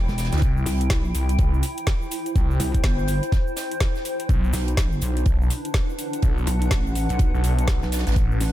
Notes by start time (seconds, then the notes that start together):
Already playing: E4 G5
0.08 E1, snare, cabasa
0.18 snare, closed hi-hat, open hi-hat, cabasa
0.25 snare, closed hi-hat
0.32 D2, snare, closed hi-hat, cabasa
0.37 snare, closed hi-hat
0.42 C2, kick, closed hi-hat, cabasa
0.57 cabasa
0.66 C2, open hi-hat, cabasa
0.81 closed hi-hat, cabasa
0.90 kick, snare, closed hi-hat, cabasa
1.05 cabasa
1.15 C2, closed hi-hat, open hi-hat, cabasa
1.29 closed hi-hat, cabasa
1.35 C5, closed hi-hat
1.39 C2, kick, closed hi-hat, cabasa
1.54 cabasa
1.63 closed hi-hat, open hi-hat, cabasa
1.77 closed hi-hat, cabasa
1.87 kick, snare, closed hi-hat, cabasa
2.02 cabasa
2.11 closed hi-hat, open hi-hat, cabasa
2.26 closed hi-hat, cabasa
2.35 C2, kick, closed hi-hat, cabasa
2.51 cabasa
2.60 C2, closed hi-hat, open hi-hat, cabasa
2.74 kick, closed hi-hat, cabasa
2.83 G1, kick, snare, closed hi-hat, cabasa
2.99 cabasa
3.08 closed hi-hat, open hi-hat, cabasa
3.23 closed hi-hat, cabasa
3.32 kick, snare, closed hi-hat, cabasa
3.47 cabasa
3.56 snare, closed hi-hat, open hi-hat, cabasa
3.71 closed hi-hat, cabasa
3.80 kick, snare, closed hi-hat, cabasa
3.95 snare, cabasa
4.05 closed hi-hat, open hi-hat, cabasa
4.20 closed hi-hat, cabasa
4.29 B1 D4, kick, closed hi-hat, cabasa
4.44 cabasa
4.53 B1, open hi-hat, cabasa
4.68 closed hi-hat, cabasa
4.77 kick, snare, closed hi-hat, cabasa
4.86 B4
4.92 cabasa
5.01 B1, closed hi-hat, open hi-hat, cabasa
5.17 closed hi-hat, cabasa
5.25 B1 F#5, kick, closed hi-hat, cabasa
5.42 cabasa
5.50 closed hi-hat, open hi-hat, cabasa
5.65 closed hi-hat, cabasa
5.74 kick, snare, closed hi-hat, cabasa
5.90 cabasa
5.98 closed hi-hat, open hi-hat, cabasa
6.13 closed hi-hat, cabasa
6.22 B1, kick, closed hi-hat, cabasa
6.38 cabasa
6.47 B1, closed hi-hat, open hi-hat, cabasa
6.62 closed hi-hat, cabasa
6.71 A1, kick, snare, closed hi-hat, cabasa
6.87 cabasa
6.95 closed hi-hat, open hi-hat, cabasa
7.09 B1, closed hi-hat, cabasa
7.19 kick, closed hi-hat, cabasa
7.34 B1, cabasa
7.44 closed hi-hat, open hi-hat, cabasa
7.59 closed hi-hat, cabasa
7.68 kick, snare, closed hi-hat, cabasa
7.83 B1, snare, cabasa
7.92 snare, closed hi-hat, open hi-hat, cabasa
7.99 snare, closed hi-hat
8.07 A1, snare, closed hi-hat, cabasa
8.12 snare, closed hi-hat
8.16 A1 C#4, kick, closed hi-hat, cabasa
8.31 cabasa
8.41 A1, open hi-hat, cabasa